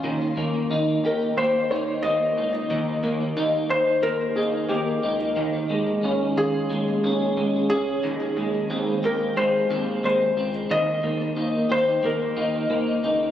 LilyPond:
<<
  \new Staff \with { instrumentName = "Felt piano" } { \time 4/4 \key ees \mixolydian \tempo 4 = 90 r4. bes'8 c''8 des''8 ees''8. r16 | r4. c''8 bes'8 aes'8 g'8. r16 | r4. aes'8 r4. aes'8 | r4. bes'8 c''4 c''8. r16 |
ees''4. c''8 bes'4. r8 | }
  \new Staff \with { instrumentName = "Clean electric guitar" } { \time 4/4 \key ees \mixolydian ees8 bes8 ees'8 g'8 bes8 ees'8 bes8 ees'8 | ees8 bes8 ees'4 bes8 ees'8 bes8 ees'8 | ees8 aes8 des'8 f'8 aes8 des'8 aes8 des'8 | ees8 aes8 c'8 g'8 aes8 c'8 aes8 c'8 |
ees8 bes8 ees'8 g'8 bes8 ees'8 bes8 ees'8 | }
  \new Staff \with { instrumentName = "Analog synth bass" } { \clef bass \time 4/4 \key ees \mixolydian ees,8 ees,8 ees,8 ees,8 ees,8 ees,8 ees,8 des,8 | ees,8 ees,8 ees,8 ees,8 ees,8 ees,8 ees,8 des,8 | ees,8 ees,8 ees,8 ees,8 ees,8 ees,8 ees,8 des,8 | ees,8 ees,8 ees,8 ees,8 ees,8 ees,8 ees,8 des,8 |
ees,8 ees,8 ees,8 ees,8 ees,8 ees,8 ees,8 des,8 | }
>>